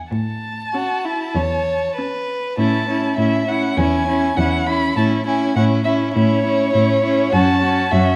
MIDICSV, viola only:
0, 0, Header, 1, 2, 480
1, 0, Start_track
1, 0, Key_signature, 3, "major"
1, 0, Tempo, 614754
1, 87, Time_signature, 4, 2, 24, 8
1, 2485, Tempo, 592300
1, 6518, End_track
2, 0, Start_track
2, 0, Title_t, "Viola"
2, 0, Program_c, 0, 41
2, 582, Note_on_c, 0, 61, 31
2, 934, Note_off_c, 0, 61, 0
2, 1545, Note_on_c, 0, 61, 29
2, 1900, Note_off_c, 0, 61, 0
2, 2020, Note_on_c, 0, 61, 39
2, 2242, Note_off_c, 0, 61, 0
2, 2247, Note_on_c, 0, 61, 35
2, 2478, Note_off_c, 0, 61, 0
2, 2484, Note_on_c, 0, 61, 35
2, 2719, Note_off_c, 0, 61, 0
2, 2724, Note_on_c, 0, 61, 37
2, 2962, Note_off_c, 0, 61, 0
2, 2967, Note_on_c, 0, 61, 40
2, 3200, Note_off_c, 0, 61, 0
2, 3205, Note_on_c, 0, 61, 37
2, 3444, Note_off_c, 0, 61, 0
2, 3450, Note_on_c, 0, 61, 36
2, 3686, Note_off_c, 0, 61, 0
2, 3691, Note_on_c, 0, 61, 36
2, 3925, Note_off_c, 0, 61, 0
2, 3930, Note_on_c, 0, 61, 41
2, 4170, Note_off_c, 0, 61, 0
2, 4175, Note_on_c, 0, 61, 38
2, 4414, Note_off_c, 0, 61, 0
2, 4421, Note_on_c, 0, 61, 40
2, 4655, Note_off_c, 0, 61, 0
2, 4663, Note_on_c, 0, 61, 41
2, 4894, Note_off_c, 0, 61, 0
2, 4903, Note_on_c, 0, 61, 41
2, 5134, Note_off_c, 0, 61, 0
2, 5142, Note_on_c, 0, 61, 36
2, 5373, Note_off_c, 0, 61, 0
2, 5378, Note_on_c, 0, 61, 41
2, 5609, Note_off_c, 0, 61, 0
2, 5628, Note_on_c, 0, 61, 43
2, 5853, Note_off_c, 0, 61, 0
2, 5858, Note_on_c, 0, 61, 44
2, 6088, Note_off_c, 0, 61, 0
2, 6106, Note_on_c, 0, 61, 44
2, 6330, Note_off_c, 0, 61, 0
2, 6341, Note_on_c, 0, 61, 47
2, 6518, Note_off_c, 0, 61, 0
2, 6518, End_track
0, 0, End_of_file